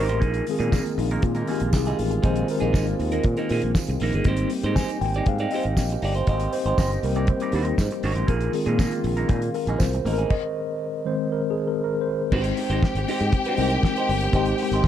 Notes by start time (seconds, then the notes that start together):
Already playing: D#3 G3 A#3 C4 D#4 G4 C5
0.00 A#4
0.08 A1 D#4 G4 C5, closed hi-hat
0.20 A#1 A#3 D#4 G#4, kick, closed hi-hat
0.24 G#3 A#3 F4
0.34 closed hi-hat
0.46 D#3 G#3 C4, muted clean electric guitar stroke, open hi-hat
0.51 G#4
0.59 A#2 A#3 D#4 G#4, closed hi-hat
0.71 A#3 D#4 F4 G#4, kick, snare, tambourine
0.85 muted clean electric guitar stroke, closed hi-hat
0.98 A#1 D#4, muted clean electric guitar stroke, open hi-hat
1.11 A#3 D#4 A#4, closed hi-hat
1.22 A#2 D#3 G#3 C4 F4, kick, closed hi-hat
1.35 A#3 D#4 A#4, closed hi-hat
1.47 A#3 D#4 G4 G#4, open hi-hat
1.60 A#1, muted clean electric guitar stroke, closed hi-hat
1.73 C2 G#4, muted clean electric guitar stroke, kick, snare, tambourine
1.86 A#3 D#4 G#4, closed hi-hat
1.98 A1, muted clean electric guitar stroke, open hi-hat
2.11 muted clean electric guitar stroke, closed hi-hat
2.23 A#1 D#3 G#3 A#3 C4 D#4 G#4 C5, kick, closed hi-hat
2.36 closed hi-hat
2.48 A#4, muted clean electric guitar stroke, open hi-hat
2.60 A#1 A#3 D#4 G#4, closed hi-hat
2.73 G#1 A#3 D#4 G#4, kick, snare, tambourine
2.87 muted clean electric guitar stroke, closed hi-hat
2.99 D#2, muted clean electric guitar stroke, open hi-hat
3.12 A#3 D#4 A#4, closed hi-hat
3.23 A#2, kick, closed hi-hat
3.37 A#3 D#4 A#4, closed hi-hat
3.49 A#2 A#3 D#4 G#4, open hi-hat
3.62 A#1, muted clean electric guitar stroke, closed hi-hat
3.75 muted clean electric guitar stroke, kick, snare, tambourine
3.87 C2, muted clean electric guitar stroke, closed hi-hat
4.00 A#1 A#3 D#4, open hi-hat
4.04 A#4
4.13 G1 A#3 D#4 G#4, closed hi-hat
4.24 G#1 G3 A#3 C4 D#4 G4 C5, kick, closed hi-hat
4.36 closed hi-hat
4.50 muted clean electric guitar stroke, open hi-hat
4.63 G#2 D#4 G4 C5, closed hi-hat
4.76 D#4 G4 C5 G#5, kick, snare, tambourine
4.89 muted clean electric guitar stroke, closed hi-hat
5.01 G#1 G5, muted clean electric guitar stroke, open hi-hat
5.14 D#4 G4 D5, closed hi-hat
5.26 G#2 F5, muted clean electric guitar stroke, kick, closed hi-hat
5.38 D#4 G4 D5, closed hi-hat
5.51 D#4 G4 D#5, open hi-hat
5.55 C5
5.63 G#1, muted clean electric guitar stroke, closed hi-hat
5.77 A#1, muted clean electric guitar stroke, kick, snare, tambourine
5.89 muted clean electric guitar stroke, closed hi-hat
6.02 G1 D#4 G4 D5, open hi-hat
6.15 D#4 G4 C5, closed hi-hat
6.27 G#1 D#4 G4 C5 D#5, kick, closed hi-hat
6.40 closed hi-hat
6.53 C5, muted clean electric guitar stroke, open hi-hat
6.65 G#1 D#4 G4 C5, closed hi-hat
6.78 G1 D#4 G4 C5, kick, snare, tambourine
6.91 muted clean electric guitar stroke, closed hi-hat
7.03 C2 G3 A#3 C4 A#4, muted clean electric guitar stroke, open hi-hat
7.16 D#4 G4 D5, closed hi-hat
7.27 C5, muted clean electric guitar stroke, kick, closed hi-hat
7.40 D#4 G4 D5, closed hi-hat
7.52 D#2 D#4 G4, open hi-hat
7.56 C5
7.65 muted clean electric guitar stroke, closed hi-hat
7.78 G#2, muted clean electric guitar stroke, kick, snare, tambourine
7.91 muted clean electric guitar stroke, closed hi-hat
8.03 G#1 D#4 G4 D5, open hi-hat
8.15 A1 D#4 G4 C5, closed hi-hat
8.27 A#1 D#3 A#3 D#4 F4 G#4 A#4, kick, closed hi-hat
8.41 closed hi-hat
8.52 D#3 G#3 C4 G#4, muted clean electric guitar stroke, open hi-hat
8.66 A#2 A#3 D#4 G#4, closed hi-hat
8.79 A#3 D#4 G#4, kick, snare, tambourine
8.91 muted clean electric guitar stroke, closed hi-hat
9.04 A#1, muted clean electric guitar stroke, open hi-hat
9.17 A#3 D#4 A#4, closed hi-hat
9.28 A#2 A#3 D#4 G#4, kick, closed hi-hat
9.42 muted clean electric guitar stroke, closed hi-hat
9.54 A#4, muted clean electric guitar stroke, open hi-hat
9.67 A#1 A#3 D#4 G#4, closed hi-hat
9.79 C2 C5, muted clean electric guitar stroke, kick, snare, tambourine
9.93 muted clean electric guitar stroke, closed hi-hat
10.05 A1 A#3 D#4 A#4, open hi-hat
10.13 A#4
10.18 A#3 D#4 G#4, closed hi-hat
10.30 D#5, kick, crash
11.05 D#3 G#3 C4 C5
11.32 A#4
11.50 G#4
11.67 A#4
11.84 A#4
12.01 C5
12.32 G#1 D#3 G#3 C4 D#4 G4 C5 G5, kick, crash
12.44 muted clean electric guitar stroke, closed hi-hat
12.57 muted clean electric guitar stroke, open hi-hat
12.70 G#1 D#4 G4 C5, closed hi-hat
12.83 kick, snare
12.95 G#1, muted clean electric guitar stroke, closed hi-hat
13.08 D#4 G4 C5, open hi-hat
13.20 G#2, muted clean electric guitar stroke, closed hi-hat
13.32 muted clean electric guitar stroke, kick, closed hi-hat
13.45 D#4 G4 C5, closed hi-hat
13.57 C2 G#3 C4 D#4 G4 A#4, open hi-hat
13.61 G4 C5
13.70 muted clean electric guitar stroke, closed hi-hat
13.83 muted clean electric guitar stroke, kick, snare
13.96 D#4 G4 C5, closed hi-hat
14.09 G1, muted clean electric guitar stroke, open hi-hat
14.21 muted clean electric guitar stroke, closed hi-hat
14.32 G#1 G#3 C4 D#4 G4 C5, kick, closed hi-hat
14.36 C5
14.45 muted clean electric guitar stroke, closed hi-hat
14.58 muted clean electric guitar stroke, open hi-hat
14.71 G#1 G4 C5, closed hi-hat
14.75 D#4
14.84 C2, kick